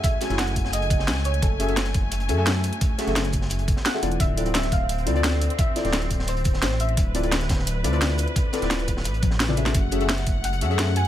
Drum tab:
HH |x-xxxxx-xxx-x-xx|x-xxxxx-xxx-x-xx|x-xxxxx-xxx-x-xx|x-xxxxx-xxxxx-xx|
SD |--ooo--o---ooo--|----oo------oo--|--ooo--o---ooo--|----oo------oo--|
T1 |----------------|----------------|----------------|----------------|
T2 |----------------|----------------|----------------|----------------|
BD |o-----o---o-----|o-----o---------|o-----o---o-----|o-----o---------|

HH |x-xxxxx-xxx-x-xx|x-xxxxx-x-xxx-xx|x-xxxxx-xxx-x-xx|x-xxxxx-xxxxx-x-|
SD |--ooo--o---ooo--|----oooo----oo--|--ooo--o---ooo-o|----oo------oo--|
T1 |----------------|----------------|----------o-----|----------------|
T2 |----------------|----------------|-------------o--|----------------|
BD |o-----o---o-----|o-----o---------|o-----o---o-----|o-----o---------|